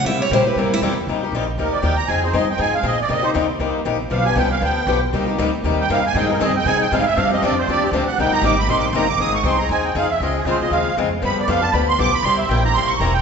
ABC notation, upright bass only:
X:1
M:4/4
L:1/8
Q:"Swing" 1/4=236
K:Cphr
V:1 name="Upright bass" clef=bass
C,2 B,,2 G,,2 =E,,2 | [K:Cm] C,,2 B,,,2 D,,2 E,,2 | F,,2 G,,2 A,,2 B,,2 | C,2 E,,2 C,,2 B,,,2 |
=B,,,2 C,,2 D,,2 B,,,2 | C,,2 D,,2 E,,2 G,,2 | A,,2 G,,2 C,2 A,,2 | G,,2 F,,2 E,,2 D,,2 |
C,, z A,,,2 B,,,2 G,,,2 | [K:Fm] A,,,2 C,,2 E,,2 F,,2 | D,,2 C,, z E,,2 F,,2 | G,,2 F,,2 =D,,2 =B,,, z |
C,,2 B,,,2 G,,,2 =E,,,2 |]